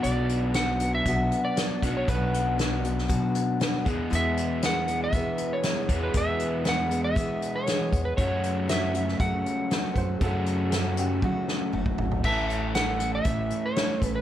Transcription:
<<
  \new Staff \with { instrumentName = "Electric slide guitar" } { \time 4/4 \key a \major \tempo 4 = 118 d''4 fis''8. e''4 d''4 cis''16 | b'4 r2. | e''4 fis''8. e''4 cis''4 b'16 | e''4 fis''8. e''4 cis''4 b'16 |
cis''4 e''4 fis''2~ | fis''2. r4 | e''4 fis''8. e''4 cis''4 b'16 | }
  \new Staff \with { instrumentName = "Upright piano" } { \time 4/4 \key a \major r1 | r1 | r1 | r1 |
r2. r8 <b' c''>8 | <gis' a'>4 <gis' a'>8 g'8 fis'4.~ fis'16 r16 | r1 | }
  \new Staff \with { instrumentName = "Steel-string acoustic guitar" } { \time 4/4 \key a \major <b, fis b d' fis'>4 <fis b d' fis'>8 <b d' fis'>8 <b, fis b d' fis'>4 <fis b d' fis'>8 <b d' fis'>8 | <b, fis b d' fis'>4 <fis b d' fis'>8 <b d' fis'>8 <b, fis b d' fis'>4 <fis b d' fis'>8 <e gis b gis'>8 | <e, b, e gis b gis'>4 <e gis b gis'>8 <e gis b gis'>8 <e, b, e gis b gis'>4 <e gis b gis'>4 | <e, b, e gis b gis'>4 <e gis b gis'>8 <e gis b gis'>8 <e, b, e gis b gis'>4 <e gis b gis'>8 <e gis b gis'>8 |
<fis, cis fis a cis' fis'>4 <fis a cis' fis'>8 <fis a cis' fis'>8 <fis, cis fis a cis' fis'>4 <fis a cis' fis'>8 <fis a cis' fis'>8 | <fis, cis fis a cis' fis'>4 <fis a cis' fis'>8 <fis a cis' fis'>8 <fis, cis fis a cis' fis'>4 <fis a cis' fis'>4 | <a, e a cis' a'>4 <e a cis' a'>8 <a cis' a'>8 <a, e a cis' a'>4 <e a cis' a'>8 <a cis' a'>8 | }
  \new Staff \with { instrumentName = "Overdriven electric guitar" } { \clef bass \time 4/4 \key a \major <b, fis b d' fis'>2.~ <b, fis b d' fis'>8 <b, fis b d' fis'>8~ | <b, fis b d' fis'>2.~ <b, fis b d' fis'>8 <e, b, e gis b gis'>8~ | <e, b, e gis b gis'>2.~ <e, b, e gis b gis'>8 <e, b, e gis b gis'>8~ | <e, b, e gis b gis'>2.~ <e, b, e gis b gis'>8 r8 |
<fis, cis fis a cis' fis'>1 | <fis, cis fis a cis' fis'>1 | <a, e a cis' a'>1 | }
  \new Staff \with { instrumentName = "Upright bass" } { \clef bass \time 4/4 \key a \major b,,2 b,,8 r4 b,,8 | b,,2 b,4. e,8 | e,2 e,8 r4 e,8 | e,2 e4. e,8 |
fis,2 fis,8 r4 fis,8 | fis,2 fis4 fis,,8 gis,,8 | a,,2 a,,8 r4 a,,8 | }
  \new DrumStaff \with { instrumentName = "Drums" } \drummode { \time 4/4 hh8 hh8 <hh sn>8 hh8 <hh bd>8 hh8 <hh sn>8 <hh bd>8 | <hh bd>8 hh8 <hh sn>8 hh16 sn16 <hh bd>8 hh8 <hh sn>8 <hh bd>8 | hh8 hh8 <hh sn>8 hh8 <hh bd>8 hh8 <hh sn>8 <hh bd>8 | <hh bd>8 hh8 <hh sn>8 hh8 <hh bd>8 hh8 <hh sn>8 <hh bd>8 |
<hh bd>8 hh8 <hh sn>8 hh16 sn16 <hh bd>8 hh8 <hh sn>8 <hh bd>8 | <hh bd>8 hh8 <hh sn>8 hh8 <bd tommh>8 sn8 toml16 bd16 tomfh16 tomfh16 | <cymc bd>8 hh8 <hh sn>8 hh8 <hh bd>8 hh8 <hh sn>8 <hh bd>8 | }
>>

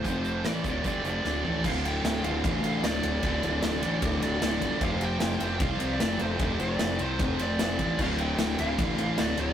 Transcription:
<<
  \new Staff \with { instrumentName = "Lead electric guitar" } { \time 4/4 \key d \minor \tempo 4 = 151 c''8. c''16 d''4 d''8 d''4. | f''8 g''4 f''4. d''8 d''8~ | d''2~ d''8 d''4. | f''8 g''4. f''8. d''8. c''8~ |
c''8 d''4 c''4 d''4. | f''8 g''4 f''4. d''8 d''8 | }
  \new Staff \with { instrumentName = "Distorted electric guitar" } { \clef bass \time 4/4 \key d \minor <f, c f>4 <a, e a>8 <d, a, d>8 <g, d g>8 <f, c f>8 <d, a, d>8 <a, e a>8 | <d, a, d>1 | <d, a, d>1 | <f, c f>1 |
<f, c f>1 | <d, a, d>1 | }
  \new Staff \with { instrumentName = "Distorted electric guitar" } { \clef bass \time 4/4 \key d \minor <f, c f>4 <a, e a>8 <d, a, d>8 <g, d g>8 <f, c f>8 <d, a, d>8 <a, e a>8 | <d, a, d>4. <d, a, d>4. <d, a, d>4 | <d, a, d>4. <d, a, d>4. <d, a, d>4 | <f, c f>4. <f, c f>4. <f, c f>4 |
<f, c f>4. <f, c f>4. <f, c f>4 | <d, a, d>4. <d, a, d>4. <d, a, d>4 | }
  \new Staff \with { instrumentName = "Fingered electric bass" } { \clef bass \time 4/4 \key d \minor f,,4 a,,8 d,,8 g,,8 f,,8 d,,8 a,,8 | d,,4 d,,8 d,,8 a,,8 a,,8 d,,8 d,,8 | d,,8 d,,8 d,,8 a,,8 d,,8 d,,8 d,,8 g,,8 | f,,4 f,,8 f,,8 c,8 c,8 f,,8 f,,8 |
f,,8 f,,8 f,,8 c,8 f,,8 f,,8 f,,8 a,,8 | d,,4 d,,8 d,,8 a,,8 a,,8 d,,8 d,,8 | }
  \new DrumStaff \with { instrumentName = "Drums" } \drummode { \time 4/4 <hh bd>8 hh8 <hh sn>8 <hh bd>8 <hh bd>8 hh8 sn8 tomfh8 | <cymc bd>8 cymr8 <cymr sn>8 cymr8 <bd cymr>8 cymr8 <cymr sn>8 cymr8 | <bd cymr>8 cymr8 <cymr sn>8 cymr8 <bd cymr>8 cymr8 <cymr sn>8 <bd cymr>8 | <bd cymr>8 cymr8 <cymr sn>8 cymr8 <bd cymr>8 cymr8 <cymr sn>8 cymr8 |
<bd cymr>8 cymr8 <cymr sn>8 cymr8 <bd cymr>8 cymr8 <cymr sn>8 <bd cymr>8 | <cymc bd>8 cymr8 <cymr sn>8 cymr8 <bd cymr>8 cymr8 <cymr sn>8 cymr8 | }
>>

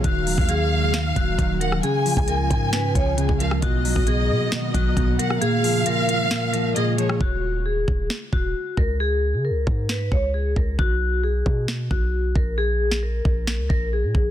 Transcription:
<<
  \new Staff \with { instrumentName = "Violin section" } { \time 4/4 \key ees \minor \tempo 4 = 134 f''2.~ f''8 ges''8 | aes''2.~ aes''8 f''8 | dis''2.~ dis''8 fis''8 | f''2. ees''8 des''8 |
r1 | r1 | r1 | r1 | }
  \new Staff \with { instrumentName = "Vibraphone" } { \time 4/4 \key ees \minor ges'4 aes'4 r8 ges'4 bes'8 | aes'4 bes'4 ces''8 des''8 aes'8 bes'8 | fis'4 aes'4 r8 fis'4 ais'8 | aes'4 bes'4. bes'8 aes'4 |
ges'4 aes'4 r8 ges'4 bes'8 | aes'4 bes'4 ces''8 des''8 aes'8 bes'8 | fis'4 aes'4 r8 fis'4 bes'8 | aes'4 bes'4. bes'8 aes'4 | }
  \new Staff \with { instrumentName = "Ambient pad" } { \clef bass \time 4/4 \key ees \minor <ees ges ais f''>1 | <des f aes f'>1 | <dis ais b fis'>1 | <des aes f'>1 |
r1 | r1 | r1 | r1 | }
  \new Staff \with { instrumentName = "Clean electric guitar" } { \clef bass \time 4/4 \key ees \minor ees8 ges8 ees4 ees8 ges8 ees8 ges8 | des8 f8 des4 des8 f8 des8 f8 | b,8 fis8 b,4 b,8 fis8 b,8 fis8 | bes,8 f8 bes,4 bes,8 f8 bes,8 f8 |
r1 | r1 | r1 | r1 | }
  \new Staff \with { instrumentName = "808-style bass" } { \clef bass \time 4/4 \key ees \minor ees,,8. ees,4.~ ees,16 ees,,8 ees,,4 | r8. des,8. aes,4 des,8. des,8. | b,,8. b,,8. b,16 r8. b,,8 b,,8 r8 | r1 |
ees,,4. ees,,8 r8 ees,,8 r8 des,8~ | des,8. des16. des,16. aes,4 des,4 des,8 | b,,4. b,4 b,,4 bes,,8~ | bes,,4. bes,,8. des,16 bes,,8. bes,16 bes,,8 | }
  \new DrumStaff \with { instrumentName = "Drums" } \drummode { \time 4/4 <hh bd>8 hho16 bd16 hh4 <hh sn>8 <hh bd>8 <hh bd>8 hh16 ss16 | hh8 hho16 bd16 hh8 <hh bd>8 <hh sn>8 <hh bd>8 hh16 bd16 hh16 ss16 | <hh bd>8 hho16 bd16 hh4 <hh sn>8 <hh bd>8 <hh bd>8 hh16 ss16 | hh8 hho8 hh8 hh8 <hh sn>8 hh8 hh8 hh16 ss16 |
bd4 r8 bd8 sn8 bd8 r8 bd8 | r4 r8 bd8 sn8 bd8 r8 bd8 | bd4 r8 bd8 sn8 bd8 r8 bd8 | r8. sn16 r8 bd8 sn8 bd8 r8 bd8 | }
>>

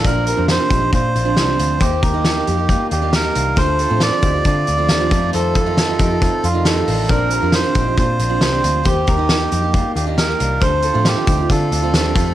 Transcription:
<<
  \new Staff \with { instrumentName = "Melodica" } { \time 4/4 \key bes \major \tempo 4 = 136 bes'4 c''4 c''2 | g'2~ g'8 g'8 bes'4 | c''4 d''4 d''2 | a'2~ a'8 f'8 a'4 |
bes'4 c''4 c''2 | g'2~ g'8 g'8 bes'4 | c''4 g'4 a'2 | }
  \new Staff \with { instrumentName = "Clean electric guitar" } { \time 4/4 \key bes \major <bes' d''>8 <g' bes'>4 <ees' g'>8 <d' f'>8 <d' f'>8 <d' g'>8 <d' f'>8 | <g' c''>8 <g' bes'>4 <ees' g'>8 <bes f'>8 <d' f'>8 <ees' g'>8 <d' f'>8 | <a' c''>8 <f' a'>4 <ees' g'>8 <d' f'>8 <d' f'>8 <d' g'>8 <c' f'>8 | <a' c''>8 <f' a'>4 <ees' g'>8 <c' f'>8 <d' f'>8 <ees' g'>8 <d' f'>8 |
<bes' d''>8 <g' bes'>4 <ees' g'>8 <d' f'>8 <d' f'>8 <d' g'>8 <d' f'>8 | <g' c''>8 <g' bes'>4 <ees' g'>8 <bes f'>8 <d' f'>8 <ees' g'>8 <d' f'>8 | <a' c''>8 <f' a'>4 <ees' g'>8 <d' f'>8 <d' f'>8 <d' g'>8 <c' f'>8 | }
  \new Staff \with { instrumentName = "Steel-string acoustic guitar" } { \time 4/4 \key bes \major <bes, f c' d' f'>8. <bes, f c' d' f'>8 <bes, f c' d' f'>8 <c' d' f'>4 <bes, f c' d' f'>8 <bes, f c' d' f'>8. | <ees bes ees' g'>8. <ees bes ees' g'>8 <ees bes ees' g'>8 <bes ees' g'>4 <ees bes ees' g'>8 <ees bes ees' g'>8. | <d f a c' f'>8. <d f a c' f'>8 <d f a c' f'>8 <a c' f'>4 <d f a c' f'>8 <d f a c' f'>16 <f, c ees a ees' f'>8~ | <f, c ees a ees' f'>8. <f, c ees a ees' f'>8 <f, c ees a ees' f'>8 <ees a ees' f'>4 <f, c ees a ees' f'>8 <f, c ees a ees' f'>8. |
<bes, f c' d' f'>8. <bes, f c' d' f'>8 <bes, f c' d' f'>8 <c' d' f'>4 <bes, f c' d' f'>8 <bes, f c' d' f'>8. | <ees bes ees' g'>8. <ees bes ees' g'>8 <ees bes ees' g'>8 <bes ees' g'>4 <ees bes ees' g'>8 <ees bes ees' g'>8. | <d f a c' f'>8. <d f a c' f'>8 <d f a c' f'>8 <a c' f'>4 <d f a c' f'>8 <d f a c' f'>16 <f, c ees a c' f'>8 | }
  \new Staff \with { instrumentName = "Picked electric bass" } { \clef bass \time 4/4 \key bes \major bes,,8. f,8 r16 bes,,8 bes,8 bes,,8 c,8 d,8 | ees,8 ees,4 f,8. r16 ees,4 c,8 | d,8. a,8 r16 d,8 d8 d,8 ees,8 f,8 | f,4. f,8. r16 f,4 a,,8 |
bes,,8. f,8 r16 bes,,8 bes,8 bes,,8 c,8 d,8 | ees,8 ees,4 f,8. r16 ees,4 c,8 | d,8. a,8 r16 d,8 d8 d,8 ees,8 f,8 | }
  \new DrumStaff \with { instrumentName = "Drums" } \drummode { \time 4/4 <hh bd>8 hh8 <hh sn>8 <hh bd>8 <hh bd>8 hh8 <hh sn>8 hh8 | <hh bd>8 <hh bd>8 <hh sn>8 hh8 <hh bd>8 hh8 <hh sn>8 hh8 | <hh bd>8 hh8 <hh sn>8 <hh bd>8 <hh bd>8 hh8 <hh sn>8 <hh bd>8 | hh8 <hh bd>8 <hh sn>8 <hh bd>8 <hh bd>8 hh8 <hh sn>8 hho8 |
<hh bd>8 hh8 <hh sn>8 <hh bd>8 <hh bd>8 hh8 <hh sn>8 hh8 | <hh bd>8 <hh bd>8 <hh sn>8 hh8 <hh bd>8 hh8 <hh sn>8 hh8 | <hh bd>8 hh8 <hh sn>8 <hh bd>8 <hh bd>8 hh8 <hh sn>8 <hh bd>8 | }
>>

